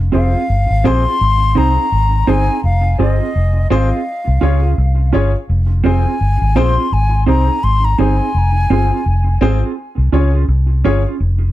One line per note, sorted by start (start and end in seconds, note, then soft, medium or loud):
0.00 0.12 F1 medium
0.12 0.34 F1 loud
0.12 0.28 C4 medium
0.12 0.30 C4 medium
0.12 0.28 F4 medium
0.12 0.30 F4 medium
0.12 0.28 G#4 medium
0.12 0.30 G#4 medium
0.12 0.30 C5 medium
0.12 0.88 F5 loud
0.33 0.43 C4 medium
0.33 0.42 F4 medium
0.33 0.42 G#4 medium
0.50 0.69 G1 medium
0.70 0.84 G#1 medium
0.84 1.05 A#1 medium
0.84 1.01 C4 loud
0.84 1.00 C4 medium
0.84 1.01 F4 medium
0.84 1.00 F4 medium
0.84 1.01 G#4 loud
0.84 1.00 G#4 medium
0.84 1.02 C5 loud
0.84 1.59 C6 loud
1.05 1.14 C4 soft
1.05 1.14 F4 medium
1.05 1.14 G#4 medium
1.21 1.55 G#1 loud
1.55 1.76 C2 medium
1.55 1.71 C4 medium
1.55 1.72 C4 medium
1.55 1.71 D#4 medium
1.55 1.73 D#4 medium
1.55 1.71 G#4 medium
1.55 1.73 G#4 medium
1.55 1.73 C5 loud
1.55 2.31 A#5 loud
1.76 1.86 C4 soft
1.76 1.85 D#4 medium
1.76 1.85 G#4 medium
1.92 2.26 G#1 medium
2.27 2.48 G1 medium
2.27 2.44 C4 loud
2.27 2.43 C4 medium
2.27 2.43 D#4 medium
2.27 2.44 D#4 medium
2.27 2.43 G#4 loud
2.27 2.44 G#4 medium
2.27 2.45 C5 loud
2.27 2.64 G#5 loud
2.49 2.57 C4 medium
2.49 2.57 D#4 medium
2.49 2.57 G#4 medium
2.64 2.97 F1 loud
2.64 2.97 F5 medium
2.98 3.19 G1 medium
2.98 3.15 C4 medium
2.98 3.14 C4 medium
2.98 3.16 F4 medium
2.98 3.15 F4 medium
2.98 3.16 G#4 medium
2.98 3.15 G#4 medium
2.98 3.16 C5 medium
2.98 3.68 D#5 medium
3.19 3.29 C4 medium
3.19 3.28 F4 medium
3.19 3.28 G#4 medium
3.36 3.69 F1 loud
3.70 3.91 G#1 medium
3.70 3.87 C4 loud
3.70 3.86 C4 medium
3.70 3.86 F4 medium
3.70 3.87 F4 medium
3.70 3.87 G#4 medium
3.70 3.86 G#4 loud
3.70 3.88 C5 loud
3.70 5.11 F5 medium
3.91 4.00 C4 medium
3.91 4.00 F4 medium
3.91 4.00 G#4 medium
4.28 4.42 C2 medium
4.41 4.76 C#2 medium
4.41 4.57 C#4 medium
4.41 4.58 C#4 medium
4.41 4.57 F4 medium
4.41 4.59 F4 medium
4.41 4.57 G#4 medium
4.41 4.59 G#4 medium
4.41 4.59 C#5 loud
4.62 4.71 C#4 soft
4.62 4.71 F4 medium
4.62 4.71 G#4 medium
4.78 5.12 C2 loud
5.13 5.34 G1 medium
5.13 5.28 C#4 medium
5.13 5.30 C#4 loud
5.13 5.28 F4 medium
5.13 5.30 F4 medium
5.13 5.29 G#4 loud
5.13 5.30 G#4 medium
5.13 5.30 C#5 loud
5.49 5.83 F1 loud
5.84 6.05 F1 medium
5.84 5.99 C4 medium
5.84 6.01 C4 medium
5.84 6.00 F4 medium
5.84 6.01 F4 medium
5.84 6.00 G#4 medium
5.84 6.02 G#4 medium
5.84 6.02 C5 medium
5.84 6.59 G#5 medium
6.05 6.14 C4 medium
6.05 6.14 F4 medium
6.05 6.14 G#4 medium
6.21 6.41 G1 medium
6.42 6.56 G#1 medium
6.56 6.76 A#1 loud
6.56 6.71 C4 medium
6.56 6.72 C4 loud
6.56 6.71 F4 medium
6.56 6.73 F4 loud
6.56 6.73 G#4 loud
6.56 6.71 G#4 medium
6.56 6.73 C5 loud
6.56 6.95 C6 loud
6.77 6.86 C4 medium
6.77 6.86 F4 medium
6.77 6.86 G#4 medium
6.92 7.26 G#1 loud
6.92 7.27 G#5 loud
7.26 7.48 C2 medium
7.26 7.42 C4 medium
7.26 7.44 C4 loud
7.26 7.42 D#4 medium
7.26 7.44 D#4 medium
7.26 7.42 G#4 medium
7.26 7.44 G#4 medium
7.26 7.45 C5 medium
7.26 7.65 A#5 medium
7.47 7.57 C4 soft
7.47 7.57 D#4 soft
7.47 7.56 G#4 medium
7.64 7.97 G#1 medium
7.64 7.86 C6 loud
7.85 8.00 A#5 medium
7.98 8.19 G1 medium
7.98 8.14 C4 medium
7.98 8.16 C4 medium
7.98 8.14 D#4 medium
7.98 8.16 D#4 medium
7.98 8.14 G#4 medium
7.98 8.16 G#4 medium
7.98 8.16 C5 medium
7.98 9.42 G#5 loud
8.19 8.28 C4 medium
8.19 8.28 D#4 medium
8.19 8.28 G#4 medium
8.35 8.69 F1 medium
8.70 8.90 G1 medium
8.70 8.87 C4 medium
8.70 8.85 C4 medium
8.70 8.87 F4 medium
8.70 8.85 F4 medium
8.70 8.85 G#4 medium
8.70 8.87 G#4 medium
8.70 8.87 C5 medium
8.91 9.00 C4 medium
8.91 9.00 F4 medium
8.91 8.99 G#4 medium
9.06 9.40 F1 loud
9.41 9.61 G#1 medium
9.41 9.58 C4 loud
9.41 9.57 C4 medium
9.41 9.58 F4 medium
9.41 9.57 F4 medium
9.41 9.58 G#4 medium
9.41 9.57 G#4 medium
9.41 9.58 C5 loud
9.63 9.72 C4 medium
9.63 9.71 F4 soft
9.63 9.71 G#4 medium
9.98 10.12 C2 medium
10.12 10.47 C#2 medium
10.12 10.28 C#4 medium
10.12 10.29 C#4 medium
10.12 10.28 F4 medium
10.12 10.30 F4 medium
10.12 10.28 G#4 medium
10.12 10.30 G#4 medium
10.12 10.30 C#5 medium
10.33 10.43 C#4 soft
10.33 10.42 F4 medium
10.33 10.42 G#4 medium
10.48 10.82 C2 medium
10.84 11.04 G1 medium
10.84 11.01 C#4 medium
10.84 10.99 C#4 medium
10.84 11.01 F4 medium
10.84 11.00 F4 loud
10.84 11.01 G#4 medium
10.84 11.00 G#4 loud
10.84 11.01 C#5 loud
11.06 11.14 C#4 medium
11.06 11.14 F4 medium
11.06 11.14 G#4 medium
11.20 11.52 F1 loud